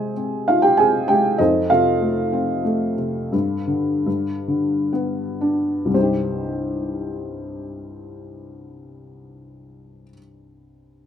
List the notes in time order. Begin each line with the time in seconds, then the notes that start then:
Already playing: C3 G#3 G#4 C5 D#5 G#5
0.17 C4
0.48 D#4 F4 F5
0.62 G4 G5
0.77 C4 G#4 G#5
1.08 G#3 G4 G5
1.38 F2 D#4 A4 C5 D#5
1.70 C3 F4 A4 F5
2.01 A3
2.33 C4
2.65 A3
2.97 C3
3.32 G2
3.67 D3
4.06 G2
4.48 D3
4.93 B3
5.41 D4
5.85 C2 G2
5.92 C3 G3 C5
5.99 D#4 G4